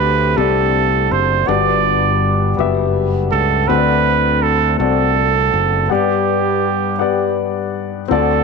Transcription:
0.00 0.34 D2 medium
0.00 0.34 D3 medium
0.00 1.45 A3 medium
0.00 0.29 C4 medium
0.00 1.45 C4 medium
0.00 8.06 D4 medium
0.00 0.29 G4 medium
0.00 1.47 G4 medium
0.00 0.30 A4 medium
0.00 0.39 B4 medium
0.00 0.31 D5 medium
0.37 1.08 C2 medium
0.37 1.39 C4 soft
0.37 1.40 G4 soft
0.37 1.14 A4 medium
0.37 1.40 A4 soft
0.37 1.41 D5 medium
1.11 1.45 F#1 medium
1.11 1.49 C5 medium
1.46 2.55 G1 medium
1.46 2.55 G2 medium
1.46 3.67 G3 medium
1.46 2.49 B3 medium
1.46 3.67 B3 medium
1.46 2.50 F#4 medium
1.46 2.50 G4 medium
1.46 2.59 D5 medium
1.50 2.51 D5 medium
2.57 3.28 F#1 medium
2.57 3.60 B3 medium
2.57 3.60 F#4 medium
2.57 3.61 G4 medium
2.57 3.61 E5 medium
3.32 3.66 C#2 medium
3.32 3.70 A4 medium
3.68 4.76 D2 medium
3.68 4.76 D3 medium
3.68 5.88 A3 medium
3.68 4.70 C4 medium
3.68 5.88 C4 medium
3.68 4.71 F#4 medium
3.68 4.72 A4 medium
3.68 4.44 B4 medium
3.68 3.77 C5 medium
3.78 4.75 D5 medium
4.43 4.79 A4 medium
4.78 5.49 C2 medium
4.78 5.80 C4 soft
4.78 5.81 F#4 soft
4.78 5.93 A4 medium
4.78 5.82 A4 soft
4.78 5.82 D5 medium
5.54 5.87 F#1 medium
5.88 6.96 G2 soft
5.88 8.08 G3 medium
5.88 6.91 B3 medium
5.88 8.08 B3 medium
5.88 6.92 G4 medium
5.88 7.38 G4 medium
5.88 6.93 D5 medium
5.88 6.91 F#5 medium
6.98 8.01 B3 medium
6.98 8.02 G4 medium
6.98 8.02 D5 medium
6.98 8.01 F#5 medium
8.08 8.44 D2 medium
8.08 8.44 D3 medium
8.08 8.44 C4 medium
8.08 8.17 F4 soft
8.08 8.44 A4 medium
8.08 8.44 D5 medium
8.16 8.44 F#4 medium

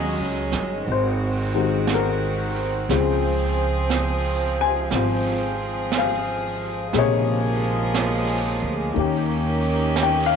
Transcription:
0.00 0.15 D#2 medium
0.00 0.85 F#3 medium
0.00 0.87 G#3 soft
0.00 2.86 G#3 medium
0.00 0.85 C#4 medium
0.00 0.87 C#4 medium
0.00 0.87 F4 medium
0.00 0.88 F#4 medium
0.00 0.85 G#4 medium
0.00 0.84 D#5 medium
0.19 0.51 C#2 medium
0.52 0.84 G1 medium
0.52 snare soft
0.86 2.86 G#1 medium
0.86 2.88 D#3 medium
0.86 6.91 C4 medium
0.86 2.88 F#4 medium
0.86 brush sweep soft
0.92 1.87 C5 medium
1.55 2.90 D#3 soft
1.55 2.89 G#3 soft
1.55 2.90 C4 soft
1.55 2.91 F#4 medium
1.87 brush sweep soft
1.87 snare medium
1.87 hi-hat pedal medium
1.94 2.57 A#4 medium
2.89 4.88 C#2 medium
2.89 6.92 C#3 medium
2.89 6.91 F3 medium
2.89 6.94 G#3 soft
2.89 4.91 C4 soft
2.89 4.94 F4 medium
2.89 4.90 G#4 medium
2.89 brush sweep soft
2.89 snare soft
3.90 brush sweep soft
3.90 snare soft
3.90 hi-hat pedal medium
4.61 5.90 G#5 medium
4.91 6.90 G#1 medium
4.91 6.94 C4 soft
4.91 6.92 G#4 medium
4.91 brush sweep soft
4.91 snare soft
4.95 6.96 F4 soft
5.92 brush sweep soft
5.92 snare medium
5.92 hi-hat pedal medium
5.98 6.93 F5 medium
6.93 8.58 A#1 medium
6.93 8.96 C3 soft
6.93 8.96 C#3 medium
6.93 8.94 F3 medium
6.93 8.94 G#3 medium
6.93 10.36 A#3 medium
6.93 8.94 A#3 soft
6.93 8.94 G#4 medium
6.93 8.96 G#4 medium
6.93 brush sweep soft
6.93 snare soft
6.99 7.38 C#5 medium
7.94 brush sweep soft
7.94 snare medium
7.94 hi-hat pedal medium
8.62 8.93 D2 medium
8.94 10.36 D#2 medium
8.94 10.36 D#3 medium
8.94 10.36 A#3 soft
8.94 10.36 C#4 medium
8.94 10.36 C#4 soft
8.94 10.36 G4 medium
8.94 brush sweep soft
8.99 10.36 G4 medium
9.96 brush sweep soft
9.96 snare medium
9.96 hi-hat pedal medium
10.03 10.32 G5 medium
10.26 10.36 F5 medium

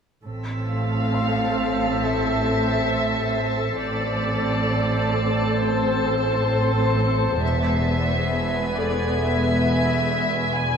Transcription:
0.25 3.80 A1 soft
0.25 3.80 A2 soft
0.25 3.80 C4 soft
0.25 3.80 A4 soft
0.25 3.80 C5 soft
0.25 3.80 A5 soft
0.25 6.94 E6 soft
0.25 5.15 B6 soft
0.70 2.00 F5 soft
1.14 3.79 C6 soft
1.14 6.93 A6 soft
2.03 3.83 E5 soft
3.82 7.38 A1 soft
3.82 7.38 A2 soft
3.82 7.37 C4 soft
3.82 7.38 A4 soft
3.82 7.38 C5 soft
3.82 5.59 D5 soft
3.82 7.38 A5 soft
5.62 7.38 C5 soft
7.41 10.77 E1 soft
7.41 10.77 E2 soft
7.41 10.77 G#3 soft
7.41 10.77 B3 soft
7.41 10.77 B4 soft
7.41 8.76 E5 soft
7.41 10.77 G#5 soft
7.41 10.77 B5 soft
8.77 10.77 A4 soft
8.77 9.21 D5 soft
9.20 10.52 E5 medium
10.54 10.77 G#5 medium

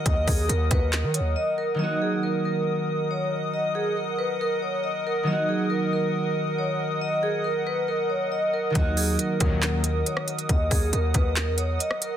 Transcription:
0.00 1.73 D#3 medium
0.00 1.76 F#3 medium
0.00 1.76 A#3 medium
0.00 1.77 D#4 medium
0.00 1.78 F#4 medium
0.00 1.76 A#4 medium
0.00 1.76 D#5 medium
0.00 1.76 F#5 medium
0.00 1.76 D#6 medium
0.06 0.27 D#2 loud
0.06 0.23 D#5 medium
0.06 kick loud
0.06 closed hi-hat medium
0.27 0.48 D#2 loud
0.27 0.45 G#4 medium
0.27 kick medium
0.27 open hi-hat medium
0.49 0.70 D#2 loud
0.49 0.66 A#4 medium
0.49 closed hi-hat medium
0.71 1.05 D#2 loud
0.71 0.89 B4 loud
0.71 kick medium
0.71 closed hi-hat medium
0.93 1.10 A#4 medium
0.93 clap loud
0.93 closed hi-hat medium
1.04 1.21 D#3 loud
1.14 1.32 C#5 medium
1.14 closed hi-hat medium
1.20 1.35 D#2 loud
1.36 1.54 D#5 medium
1.58 1.76 A#4 medium
1.74 5.22 D#3 medium
1.74 5.24 F#3 medium
1.79 5.23 A#3 medium
1.79 5.24 D#4 medium
1.79 12.17 A#4 medium
1.79 1.97 D#5 medium
1.79 12.17 D#5 medium
1.79 12.17 F#5 medium
1.79 8.71 D#6 medium
1.83 5.25 F#4 medium
2.02 2.19 G#4 medium
2.23 2.41 A#4 medium
2.45 3.06 A#4 medium
3.11 3.28 C#5 medium
3.54 3.71 D#5 medium
3.75 3.93 G#4 medium
3.97 4.15 A#4 medium
4.19 4.36 B4 medium
4.41 4.58 A#4 loud
4.62 4.80 C#5 medium
4.84 5.01 D#5 medium
5.07 5.24 A#4 medium
5.23 8.69 D#3 medium
5.23 8.71 F#3 medium
5.27 8.72 A#3 medium
5.27 8.73 D#4 medium
5.27 5.45 D#5 medium
5.32 8.74 F#4 medium
5.49 5.67 G#4 medium
5.70 5.88 A#4 medium
5.93 6.54 A#4 medium
6.59 6.76 C#5 medium
7.01 7.19 D#5 medium
7.23 7.41 G#4 loud
7.44 7.62 A#4 medium
7.67 7.84 B4 loud
7.88 8.06 A#4 medium
8.10 8.27 C#5 medium
8.32 8.49 D#5 medium
8.54 8.71 A#4 medium
8.70 12.17 D#3 medium
8.70 12.17 F#3 medium
8.75 9.17 D#2 loud
8.75 12.17 A#3 medium
8.75 12.17 D#4 medium
8.75 8.92 D#5 medium
8.75 12.17 D#6 medium
8.75 kick loud
8.75 closed hi-hat medium
8.79 12.17 F#4 medium
8.97 9.15 G#4 medium
8.97 open hi-hat medium
9.19 9.36 A#4 medium
9.19 closed hi-hat medium
9.40 10.03 D#2 loud
9.40 9.82 A#2 loud
9.40 9.82 D#3 medium
9.40 9.82 F3 loud
9.40 9.82 F#3 loud
9.40 9.82 A#3 medium
9.40 9.82 C#4 loud
9.40 10.02 A#4 medium
9.40 kick medium
9.40 closed hi-hat medium
9.62 clap loud
9.62 closed hi-hat medium
9.84 closed hi-hat medium
10.06 10.24 C#5 medium
10.06 closed hi-hat medium
10.17 cross-stick medium
10.28 closed hi-hat medium
10.39 closed hi-hat medium
10.49 10.70 D#2 loud
10.49 10.67 D#5 medium
10.49 kick loud
10.49 closed hi-hat medium
10.71 10.92 D#2 loud
10.71 10.88 G#4 medium
10.71 kick medium
10.71 open hi-hat medium
10.93 11.14 D#2 loud
10.93 11.10 A#4 medium
10.93 closed hi-hat medium
11.14 11.49 D#2 loud
11.14 11.32 B4 medium
11.14 kick medium
11.14 closed hi-hat medium
11.36 11.54 A#4 medium
11.36 clap loud
11.36 closed hi-hat medium
11.47 11.78 E2 loud
11.58 11.76 C#5 medium
11.58 closed hi-hat medium
11.79 11.97 D#5 medium
11.79 closed hi-hat medium
11.91 cross-stick medium
12.02 12.17 A#4 medium
12.02 closed hi-hat medium

